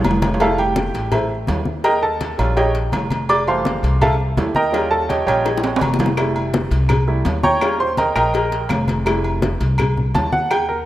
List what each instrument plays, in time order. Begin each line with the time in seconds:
0.04 upright bass F1, cowbell, low bongo, high conga, low agogo
0.11 low timbale
0.22 cowbell, low bongo, high conga, low timbale, low agogo
0.34 low timbale
0.40 grand piano G3 A3 E4 A4 E5 F5 A5, cowbell, high conga, low agogo
0.58 grand piano G4 G5, high conga, low agogo
0.76 cowbell, high conga, low timbale
0.94 upright bass A1, cowbell, low agogo
1.12 grand piano E4 A4 C5 E5, cowbell, high conga, low conga, low agogo
1.29 high conga
1.47 upright bass D#2, cowbell, high conga, low timbale, low agogo
1.65 high conga
1.84 grand piano A#4 D#5 G5 A#5, cowbell, high conga, low agogo
2.03 grand piano A4 A5, high conga
2.21 cowbell, high conga, low timbale, low agogo
2.38 upright bass A#1, grand piano G3 C#4 F4, cowbell, high conga, low agogo
2.56 grand piano G4 C#5 D#5 G5, cowbell, high conga, low agogo
2.75 cowbell, high conga
2.92 upright bass F1, cowbell, high conga, low timbale, low agogo
3.10 cowbell, high conga, low agogo
3.29 grand piano D5 D6, cowbell, high conga, low agogo
3.47 grand piano E3 G3 A3 C5 F5 A5 C6, high conga, low agogo
3.65 cowbell, high conga, low timbale
3.83 upright bass C2, cowbell, low agogo
4.01 grand piano A4 E5 F5 A5, cowbell, high conga, low conga, low agogo
4.20 high conga
4.37 upright bass D#2, grand piano G3 A3 E4, cowbell, high conga, low timbale, low agogo
4.55 grand piano A#4 D#5 G5 A#5, high conga
4.72 grand piano G3 C#4 F4, cowbell, high conga, low agogo
4.91 grand piano A4 A5, high conga
5.09 grand piano G4 C#5 D#5 G5, cowbell, high conga, low timbale, low agogo
5.26 upright bass A#1, grand piano G3 C#4 F4 G4 C#5 D#5 G5, cowbell, high conga, low agogo
5.45 cowbell, high bongo, high conga, low agogo
5.57 high bongo
5.64 cowbell, high conga, high timbale
5.76 high timbale
5.81 upright bass F1, cowbell, low bongo, high conga, low agogo
5.94 low bongo
5.99 cowbell, high conga, low timbale, low agogo
6.06 low bongo
6.17 grand piano G3 A3 E4, cowbell, high conga, low agogo, claves
6.36 high conga, low agogo
6.54 cowbell, high conga, low timbale
6.71 upright bass C2, cowbell, low agogo
6.89 cowbell, high conga, low conga, low agogo, claves
7.07 grand piano G3 A3 E4, high conga
7.25 upright bass D#2, cowbell, high conga, low timbale, low agogo
7.43 grand piano C#5 G5 A#5 C#6, high conga
7.61 grand piano G3 C#4 F4, cowbell, high conga, low agogo, claves
7.80 grand piano C5 C6, high conga
7.97 grand piano A#4 D#5 G5 A#5, cowbell, high conga, low timbale, low agogo
8.16 upright bass A#1, grand piano A#4 D#5 G5 A#5, cowbell, high conga, low agogo, claves
8.34 cowbell, high conga, low agogo
8.52 cowbell, high conga
8.69 upright bass F1, cowbell, high conga, low timbale, low agogo, claves
8.88 cowbell, high conga, low agogo
9.05 grand piano G3 A3 E4, cowbell, high conga, low agogo, claves
9.24 high conga, low agogo
9.42 cowbell, high conga, low timbale
9.60 upright bass C2, cowbell, low agogo
9.78 cowbell, high conga, low conga, low agogo, claves
9.97 high conga, low conga
10.14 upright bass D#2, grand piano A5, cowbell, high conga, low timbale, low agogo
10.32 grand piano F#5, high conga
10.51 grand piano G5, cowbell, high conga, low agogo, claves
10.69 grand piano A#4, high conga